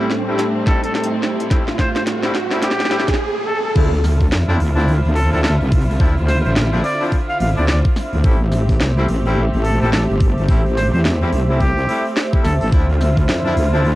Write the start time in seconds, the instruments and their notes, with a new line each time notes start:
Already playing: string section A2 G3 C4, analog synth pad A3 D4 G4 C5 E5, riser
0.10 snare
0.28 horn section G3 A3 C4 E4
0.39 snare, closed hi-hat
0.66 horn section G3 A3 C4 E4, trumpet A4, kick, snare
0.84 trumpet A4, closed hi-hat
0.95 trumpet A4, snare
1.04 closed hi-hat
1.23 snare
1.40 closed hi-hat
1.51 horn section G3 A3 C4 E4, kick, snare, closed hi-hat
1.68 snare
1.79 trumpet C5, kick, snare
1.96 trumpet C5, snare, closed hi-hat
2.07 snare, closed hi-hat
2.23 horn section G3 A3 C4 E4, snare
2.35 snare
2.51 horn section G3 A3 C4 E4, snare
2.62 trumpet G4, snare, closed hi-hat
2.71 snare
2.80 snare
2.85 snare
2.91 horn section G3 A3 C4 E4, snare
3.00 snare
3.08 kick, snare, closed hi-hat
3.14 snare
3.47 trumpet A4
3.64 trumpet A4
3.75 wobble bass D2, string section D3 C4 E4 F4, horn section F3 C4 D4 E4, kick, open hi-hat, crash
3.93 open hi-hat
3.97 analog synth pad E5
4.04 analog synth pad C5, snare, open hi-hat
4.20 kick, open hi-hat
4.32 wobble bass F2, snare, open hi-hat
4.48 horn section F3 C4 D4 E4, open hi-hat
4.60 wobble bass D2, open hi-hat
4.76 horn section F3 C4 D4 E4, open hi-hat
4.88 open hi-hat
5.05 wobble bass D2, open hi-hat
5.15 trumpet A4, open hi-hat
5.32 wobble bass D2, horn section F3 C4 D4 E4, trumpet A4, open hi-hat
5.43 trumpet A4, snare, open hi-hat
5.61 wobble bass C2, open hi-hat
5.72 kick, open hi-hat
5.82 open hi-hat
5.89 open hi-hat
5.91 open hi-hat
6.00 wobble bass D2, horn section F3 C4 D4 E4, kick, open hi-hat
6.17 open hi-hat
6.28 trumpet C5, snare, open hi-hat
6.44 wobble bass A1, trumpet C5, open hi-hat
6.56 snare, open hi-hat
6.73 horn section F3 C4 D4 E4, open hi-hat
6.84 trumpet D5, open hi-hat
7.01 horn section F3 C4 D4 E4, open hi-hat
7.12 kick, open hi-hat
7.29 trumpet F5, open hi-hat
7.40 wobble bass A1, trumpet F5, open hi-hat
7.57 wobble bass D2, horn section F3 C4 D4 E4, trumpet D5, open hi-hat
7.68 trumpet D5, snare, open hi-hat
7.85 kick, open hi-hat
7.96 snare, open hi-hat
8.13 wobble bass D2, open hi-hat
8.24 wobble bass A1, horn section G3 A3 C4 E4, string section A3 G4, kick, open hi-hat
8.52 snare, open hi-hat
8.69 kick, open hi-hat
8.80 wobble bass C2, snare, open hi-hat
8.97 horn section G3 A3 C4 E4, open hi-hat
9.09 wobble bass A1, open hi-hat
9.25 horn section G3 A3 C4 E4, open hi-hat
9.53 wobble bass A1, open hi-hat
9.64 trumpet A4, open hi-hat
9.81 wobble bass A1, horn section G3 A3 C4 E4, trumpet A4, open hi-hat
9.92 trumpet A4, snare, open hi-hat
10.09 wobble bass G1, open hi-hat
10.20 kick, open hi-hat
10.38 open hi-hat
10.48 wobble bass A1, horn section G3 A3 C4 E4, kick, open hi-hat
10.66 open hi-hat
10.77 trumpet C5, snare, open hi-hat
10.93 wobble bass E2, trumpet C5, open hi-hat
11.05 snare, open hi-hat
11.22 horn section G3 A3 C4 E4, open hi-hat
11.32 wobble bass C2, open hi-hat
11.49 horn section G3 A3 C4 E4, open hi-hat
11.60 trumpet G4, kick, open hi-hat
11.78 open hi-hat
11.89 horn section G3 A3 C4 E4, open hi-hat
12.05 open hi-hat
12.17 snare, open hi-hat
12.33 horn section G3 A3 C4 E4, kick, open hi-hat
12.44 wobble bass D2, trumpet A4, snare, open hi-hat
12.61 wobble bass A1, trumpet A4, open hi-hat
12.72 wobble bass D2, string section D3 E4 F4, horn section F3 C4 D4 E4, kick, open hi-hat
12.90 open hi-hat
13.01 snare, open hi-hat
13.17 kick, open hi-hat
13.29 wobble bass F2, snare, open hi-hat
13.45 horn section F3 C4 D4 E4, open hi-hat
13.57 wobble bass D2, open hi-hat
13.73 horn section F3 C4 D4 E4, open hi-hat
13.85 open hi-hat